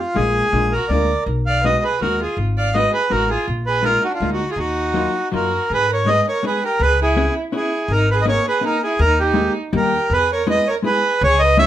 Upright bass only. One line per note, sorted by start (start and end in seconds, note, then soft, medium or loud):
0.16 0.40 A#1 medium
0.52 0.76 A#1 medium
0.89 1.14 D2 medium
1.26 1.75 B1 medium
2.01 2.25 D#2 medium
2.37 2.85 G#1 medium
3.12 3.35 A1 medium
3.48 3.95 A#1 medium
4.20 4.44 D2 medium
4.56 5.05 D#2 medium
5.33 5.57 F#2 medium
5.70 6.18 G#2 medium
6.80 7.27 C#2 loud
7.88 8.36 G#1 loud
8.99 9.47 D#2 loud
9.73 9.97 D#2 loud
10.10 10.58 E2 medium
11.21 11.67 C#2 loud